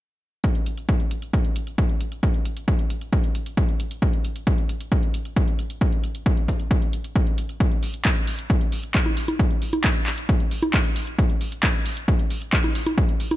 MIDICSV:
0, 0, Header, 1, 2, 480
1, 0, Start_track
1, 0, Tempo, 447761
1, 471, Time_signature, 4, 2, 24, 8
1, 14327, End_track
2, 0, Start_track
2, 0, Title_t, "Drums"
2, 471, Note_on_c, 9, 36, 113
2, 471, Note_on_c, 9, 42, 54
2, 578, Note_off_c, 9, 36, 0
2, 578, Note_off_c, 9, 42, 0
2, 590, Note_on_c, 9, 42, 25
2, 698, Note_off_c, 9, 42, 0
2, 711, Note_on_c, 9, 42, 92
2, 818, Note_off_c, 9, 42, 0
2, 831, Note_on_c, 9, 42, 50
2, 938, Note_off_c, 9, 42, 0
2, 950, Note_on_c, 9, 42, 55
2, 951, Note_on_c, 9, 36, 106
2, 1058, Note_off_c, 9, 36, 0
2, 1058, Note_off_c, 9, 42, 0
2, 1071, Note_on_c, 9, 42, 26
2, 1178, Note_off_c, 9, 42, 0
2, 1191, Note_on_c, 9, 42, 93
2, 1298, Note_off_c, 9, 42, 0
2, 1310, Note_on_c, 9, 42, 54
2, 1417, Note_off_c, 9, 42, 0
2, 1430, Note_on_c, 9, 42, 56
2, 1431, Note_on_c, 9, 36, 112
2, 1537, Note_off_c, 9, 42, 0
2, 1538, Note_off_c, 9, 36, 0
2, 1550, Note_on_c, 9, 42, 27
2, 1657, Note_off_c, 9, 42, 0
2, 1670, Note_on_c, 9, 42, 93
2, 1778, Note_off_c, 9, 42, 0
2, 1791, Note_on_c, 9, 42, 51
2, 1898, Note_off_c, 9, 42, 0
2, 1910, Note_on_c, 9, 42, 53
2, 1911, Note_on_c, 9, 36, 118
2, 2018, Note_off_c, 9, 36, 0
2, 2018, Note_off_c, 9, 42, 0
2, 2030, Note_on_c, 9, 42, 26
2, 2138, Note_off_c, 9, 42, 0
2, 2151, Note_on_c, 9, 42, 88
2, 2258, Note_off_c, 9, 42, 0
2, 2271, Note_on_c, 9, 42, 53
2, 2378, Note_off_c, 9, 42, 0
2, 2391, Note_on_c, 9, 36, 115
2, 2391, Note_on_c, 9, 42, 50
2, 2498, Note_off_c, 9, 36, 0
2, 2498, Note_off_c, 9, 42, 0
2, 2511, Note_on_c, 9, 42, 25
2, 2618, Note_off_c, 9, 42, 0
2, 2631, Note_on_c, 9, 42, 91
2, 2738, Note_off_c, 9, 42, 0
2, 2751, Note_on_c, 9, 42, 50
2, 2858, Note_off_c, 9, 42, 0
2, 2871, Note_on_c, 9, 36, 119
2, 2871, Note_on_c, 9, 42, 51
2, 2978, Note_off_c, 9, 36, 0
2, 2978, Note_off_c, 9, 42, 0
2, 2991, Note_on_c, 9, 42, 27
2, 3098, Note_off_c, 9, 42, 0
2, 3111, Note_on_c, 9, 42, 91
2, 3218, Note_off_c, 9, 42, 0
2, 3231, Note_on_c, 9, 42, 52
2, 3338, Note_off_c, 9, 42, 0
2, 3351, Note_on_c, 9, 36, 120
2, 3351, Note_on_c, 9, 42, 53
2, 3458, Note_off_c, 9, 36, 0
2, 3458, Note_off_c, 9, 42, 0
2, 3471, Note_on_c, 9, 42, 26
2, 3578, Note_off_c, 9, 42, 0
2, 3591, Note_on_c, 9, 42, 90
2, 3698, Note_off_c, 9, 42, 0
2, 3711, Note_on_c, 9, 42, 49
2, 3819, Note_off_c, 9, 42, 0
2, 3831, Note_on_c, 9, 36, 116
2, 3831, Note_on_c, 9, 42, 51
2, 3938, Note_off_c, 9, 36, 0
2, 3939, Note_off_c, 9, 42, 0
2, 3952, Note_on_c, 9, 42, 25
2, 4059, Note_off_c, 9, 42, 0
2, 4072, Note_on_c, 9, 42, 89
2, 4179, Note_off_c, 9, 42, 0
2, 4192, Note_on_c, 9, 42, 54
2, 4299, Note_off_c, 9, 42, 0
2, 4311, Note_on_c, 9, 36, 115
2, 4311, Note_on_c, 9, 42, 50
2, 4418, Note_off_c, 9, 36, 0
2, 4419, Note_off_c, 9, 42, 0
2, 4431, Note_on_c, 9, 42, 25
2, 4538, Note_off_c, 9, 42, 0
2, 4551, Note_on_c, 9, 42, 88
2, 4658, Note_off_c, 9, 42, 0
2, 4671, Note_on_c, 9, 42, 48
2, 4778, Note_off_c, 9, 42, 0
2, 4791, Note_on_c, 9, 36, 115
2, 4791, Note_on_c, 9, 42, 50
2, 4898, Note_off_c, 9, 36, 0
2, 4898, Note_off_c, 9, 42, 0
2, 4911, Note_on_c, 9, 42, 26
2, 5019, Note_off_c, 9, 42, 0
2, 5031, Note_on_c, 9, 42, 87
2, 5138, Note_off_c, 9, 42, 0
2, 5151, Note_on_c, 9, 42, 51
2, 5258, Note_off_c, 9, 42, 0
2, 5271, Note_on_c, 9, 36, 116
2, 5271, Note_on_c, 9, 42, 52
2, 5378, Note_off_c, 9, 36, 0
2, 5379, Note_off_c, 9, 42, 0
2, 5391, Note_on_c, 9, 42, 25
2, 5499, Note_off_c, 9, 42, 0
2, 5511, Note_on_c, 9, 42, 87
2, 5618, Note_off_c, 9, 42, 0
2, 5631, Note_on_c, 9, 42, 47
2, 5738, Note_off_c, 9, 42, 0
2, 5751, Note_on_c, 9, 36, 117
2, 5751, Note_on_c, 9, 42, 50
2, 5858, Note_off_c, 9, 36, 0
2, 5858, Note_off_c, 9, 42, 0
2, 5871, Note_on_c, 9, 42, 24
2, 5979, Note_off_c, 9, 42, 0
2, 5991, Note_on_c, 9, 42, 84
2, 6098, Note_off_c, 9, 42, 0
2, 6111, Note_on_c, 9, 42, 51
2, 6218, Note_off_c, 9, 42, 0
2, 6231, Note_on_c, 9, 36, 119
2, 6231, Note_on_c, 9, 42, 48
2, 6338, Note_off_c, 9, 36, 0
2, 6338, Note_off_c, 9, 42, 0
2, 6351, Note_on_c, 9, 42, 24
2, 6458, Note_off_c, 9, 42, 0
2, 6471, Note_on_c, 9, 42, 84
2, 6578, Note_off_c, 9, 42, 0
2, 6591, Note_on_c, 9, 42, 49
2, 6698, Note_off_c, 9, 42, 0
2, 6711, Note_on_c, 9, 36, 114
2, 6711, Note_on_c, 9, 42, 48
2, 6818, Note_off_c, 9, 36, 0
2, 6818, Note_off_c, 9, 42, 0
2, 6831, Note_on_c, 9, 42, 24
2, 6938, Note_off_c, 9, 42, 0
2, 6951, Note_on_c, 9, 36, 63
2, 6951, Note_on_c, 9, 42, 87
2, 7058, Note_off_c, 9, 36, 0
2, 7058, Note_off_c, 9, 42, 0
2, 7071, Note_on_c, 9, 42, 48
2, 7178, Note_off_c, 9, 42, 0
2, 7191, Note_on_c, 9, 36, 115
2, 7191, Note_on_c, 9, 42, 50
2, 7298, Note_off_c, 9, 36, 0
2, 7298, Note_off_c, 9, 42, 0
2, 7311, Note_on_c, 9, 42, 25
2, 7418, Note_off_c, 9, 42, 0
2, 7431, Note_on_c, 9, 42, 82
2, 7538, Note_off_c, 9, 42, 0
2, 7551, Note_on_c, 9, 42, 47
2, 7658, Note_off_c, 9, 42, 0
2, 7671, Note_on_c, 9, 36, 120
2, 7671, Note_on_c, 9, 42, 50
2, 7778, Note_off_c, 9, 36, 0
2, 7778, Note_off_c, 9, 42, 0
2, 7792, Note_on_c, 9, 42, 24
2, 7899, Note_off_c, 9, 42, 0
2, 7911, Note_on_c, 9, 42, 83
2, 8018, Note_off_c, 9, 42, 0
2, 8031, Note_on_c, 9, 42, 51
2, 8139, Note_off_c, 9, 42, 0
2, 8151, Note_on_c, 9, 36, 119
2, 8151, Note_on_c, 9, 42, 49
2, 8258, Note_off_c, 9, 36, 0
2, 8258, Note_off_c, 9, 42, 0
2, 8271, Note_on_c, 9, 42, 24
2, 8378, Note_off_c, 9, 42, 0
2, 8391, Note_on_c, 9, 46, 105
2, 8498, Note_off_c, 9, 46, 0
2, 8511, Note_on_c, 9, 42, 49
2, 8618, Note_off_c, 9, 42, 0
2, 8631, Note_on_c, 9, 36, 113
2, 8631, Note_on_c, 9, 39, 113
2, 8631, Note_on_c, 9, 42, 52
2, 8738, Note_off_c, 9, 36, 0
2, 8738, Note_off_c, 9, 39, 0
2, 8738, Note_off_c, 9, 42, 0
2, 8750, Note_on_c, 9, 42, 24
2, 8858, Note_off_c, 9, 42, 0
2, 8870, Note_on_c, 9, 46, 105
2, 8978, Note_off_c, 9, 46, 0
2, 8991, Note_on_c, 9, 42, 52
2, 9098, Note_off_c, 9, 42, 0
2, 9111, Note_on_c, 9, 36, 110
2, 9111, Note_on_c, 9, 42, 53
2, 9218, Note_off_c, 9, 36, 0
2, 9218, Note_off_c, 9, 42, 0
2, 9231, Note_on_c, 9, 42, 25
2, 9338, Note_off_c, 9, 42, 0
2, 9350, Note_on_c, 9, 46, 103
2, 9458, Note_off_c, 9, 46, 0
2, 9471, Note_on_c, 9, 42, 49
2, 9578, Note_off_c, 9, 42, 0
2, 9591, Note_on_c, 9, 36, 118
2, 9591, Note_on_c, 9, 39, 112
2, 9591, Note_on_c, 9, 42, 50
2, 9698, Note_off_c, 9, 36, 0
2, 9698, Note_off_c, 9, 39, 0
2, 9698, Note_off_c, 9, 42, 0
2, 9711, Note_on_c, 9, 42, 24
2, 9711, Note_on_c, 9, 63, 60
2, 9818, Note_off_c, 9, 42, 0
2, 9818, Note_off_c, 9, 63, 0
2, 9831, Note_on_c, 9, 46, 100
2, 9938, Note_off_c, 9, 46, 0
2, 9951, Note_on_c, 9, 42, 51
2, 9951, Note_on_c, 9, 63, 61
2, 10058, Note_off_c, 9, 42, 0
2, 10058, Note_off_c, 9, 63, 0
2, 10071, Note_on_c, 9, 36, 115
2, 10071, Note_on_c, 9, 42, 52
2, 10178, Note_off_c, 9, 36, 0
2, 10178, Note_off_c, 9, 42, 0
2, 10191, Note_on_c, 9, 42, 26
2, 10298, Note_off_c, 9, 42, 0
2, 10311, Note_on_c, 9, 46, 95
2, 10418, Note_off_c, 9, 46, 0
2, 10430, Note_on_c, 9, 42, 51
2, 10430, Note_on_c, 9, 63, 60
2, 10538, Note_off_c, 9, 42, 0
2, 10538, Note_off_c, 9, 63, 0
2, 10551, Note_on_c, 9, 36, 110
2, 10551, Note_on_c, 9, 39, 113
2, 10551, Note_on_c, 9, 42, 53
2, 10658, Note_off_c, 9, 36, 0
2, 10658, Note_off_c, 9, 39, 0
2, 10658, Note_off_c, 9, 42, 0
2, 10671, Note_on_c, 9, 42, 25
2, 10778, Note_off_c, 9, 42, 0
2, 10791, Note_on_c, 9, 39, 60
2, 10791, Note_on_c, 9, 46, 102
2, 10898, Note_off_c, 9, 39, 0
2, 10898, Note_off_c, 9, 46, 0
2, 10910, Note_on_c, 9, 42, 51
2, 11018, Note_off_c, 9, 42, 0
2, 11030, Note_on_c, 9, 42, 53
2, 11031, Note_on_c, 9, 36, 109
2, 11138, Note_off_c, 9, 36, 0
2, 11138, Note_off_c, 9, 42, 0
2, 11150, Note_on_c, 9, 42, 26
2, 11257, Note_off_c, 9, 42, 0
2, 11270, Note_on_c, 9, 46, 96
2, 11377, Note_off_c, 9, 46, 0
2, 11390, Note_on_c, 9, 42, 49
2, 11390, Note_on_c, 9, 63, 77
2, 11497, Note_off_c, 9, 42, 0
2, 11497, Note_off_c, 9, 63, 0
2, 11510, Note_on_c, 9, 39, 108
2, 11510, Note_on_c, 9, 42, 52
2, 11511, Note_on_c, 9, 36, 116
2, 11617, Note_off_c, 9, 39, 0
2, 11617, Note_off_c, 9, 42, 0
2, 11618, Note_off_c, 9, 36, 0
2, 11630, Note_on_c, 9, 42, 24
2, 11737, Note_off_c, 9, 42, 0
2, 11750, Note_on_c, 9, 46, 98
2, 11857, Note_off_c, 9, 46, 0
2, 11870, Note_on_c, 9, 42, 52
2, 11977, Note_off_c, 9, 42, 0
2, 11990, Note_on_c, 9, 42, 53
2, 11991, Note_on_c, 9, 36, 114
2, 12098, Note_off_c, 9, 36, 0
2, 12098, Note_off_c, 9, 42, 0
2, 12110, Note_on_c, 9, 42, 27
2, 12217, Note_off_c, 9, 42, 0
2, 12230, Note_on_c, 9, 46, 99
2, 12338, Note_off_c, 9, 46, 0
2, 12351, Note_on_c, 9, 42, 53
2, 12458, Note_off_c, 9, 42, 0
2, 12471, Note_on_c, 9, 36, 108
2, 12471, Note_on_c, 9, 39, 117
2, 12471, Note_on_c, 9, 42, 57
2, 12578, Note_off_c, 9, 36, 0
2, 12578, Note_off_c, 9, 39, 0
2, 12578, Note_off_c, 9, 42, 0
2, 12591, Note_on_c, 9, 42, 26
2, 12698, Note_off_c, 9, 42, 0
2, 12711, Note_on_c, 9, 46, 101
2, 12818, Note_off_c, 9, 46, 0
2, 12831, Note_on_c, 9, 42, 54
2, 12938, Note_off_c, 9, 42, 0
2, 12951, Note_on_c, 9, 36, 110
2, 12951, Note_on_c, 9, 42, 56
2, 13058, Note_off_c, 9, 36, 0
2, 13058, Note_off_c, 9, 42, 0
2, 13071, Note_on_c, 9, 42, 27
2, 13178, Note_off_c, 9, 42, 0
2, 13191, Note_on_c, 9, 46, 100
2, 13298, Note_off_c, 9, 46, 0
2, 13311, Note_on_c, 9, 42, 53
2, 13418, Note_off_c, 9, 42, 0
2, 13431, Note_on_c, 9, 36, 112
2, 13431, Note_on_c, 9, 39, 115
2, 13431, Note_on_c, 9, 42, 54
2, 13538, Note_off_c, 9, 36, 0
2, 13538, Note_off_c, 9, 39, 0
2, 13538, Note_off_c, 9, 42, 0
2, 13551, Note_on_c, 9, 42, 27
2, 13551, Note_on_c, 9, 63, 62
2, 13658, Note_off_c, 9, 42, 0
2, 13658, Note_off_c, 9, 63, 0
2, 13671, Note_on_c, 9, 46, 99
2, 13778, Note_off_c, 9, 46, 0
2, 13791, Note_on_c, 9, 42, 55
2, 13791, Note_on_c, 9, 63, 65
2, 13898, Note_off_c, 9, 42, 0
2, 13898, Note_off_c, 9, 63, 0
2, 13911, Note_on_c, 9, 36, 117
2, 13911, Note_on_c, 9, 42, 54
2, 14018, Note_off_c, 9, 36, 0
2, 14018, Note_off_c, 9, 42, 0
2, 14031, Note_on_c, 9, 42, 27
2, 14138, Note_off_c, 9, 42, 0
2, 14151, Note_on_c, 9, 46, 102
2, 14258, Note_off_c, 9, 46, 0
2, 14271, Note_on_c, 9, 42, 57
2, 14271, Note_on_c, 9, 63, 61
2, 14327, Note_off_c, 9, 42, 0
2, 14327, Note_off_c, 9, 63, 0
2, 14327, End_track
0, 0, End_of_file